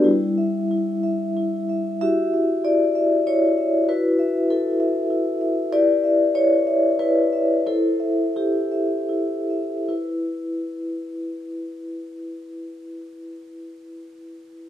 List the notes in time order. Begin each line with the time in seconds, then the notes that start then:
0.04 G3 E4
0.38 E5
0.71 E4
1.03 E5
1.37 E4
1.69 E5
2.01 E4 F#4 G4 E5
2.34 E5
2.64 E4 D5
2.95 E5
3.27 E4 C#5
3.58 E5
3.88 E4 F#4 B4
4.19 E5
4.50 E4 A4
4.80 E5
5.10 E4
5.41 E5
5.73 E4 G4 B4 D5
6.04 E5
6.35 E4 C#5
6.67 E5
6.99 E4 B4
7.33 E5
7.67 E4 A4 C5
8.00 E5
8.36 E4 G4
8.72 E5
9.09 E4
9.50 E5
9.89 E4 B4